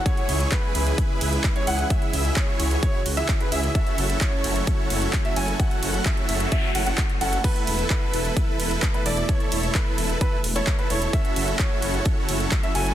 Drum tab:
CC |----------------|----------------|----------------|----------------|
RD |--x---x---x---x-|--x---x---x---x-|--x---x---x---x-|--x---x---x---x-|
HH |xxoxx-oxx-oxxxox|xxoxx-oxx-oxxxox|xxoxx-oxx-oxxxox|xxoxxxoxx-oxxxox|
CP |----x-------x---|----x-------x---|----x-------x---|----x-------x---|
BD |o---o---o---o---|o---o---o---o---|o---o---o---o---|o---o---o---o---|

CC |x---------------|----------------|----------------|
RD |--x---x---x---x-|--x---x---x---x-|--x---x---x---x-|
HH |xxoxx-oxx-oxxxox|xxoxx-oxx-oxxxox|xxoxx-oxx-oxxxox|
CP |----x-------x---|----x-------x---|----x-------x---|
BD |o---o---o---o---|o---o---o---o---|o---o---o---o---|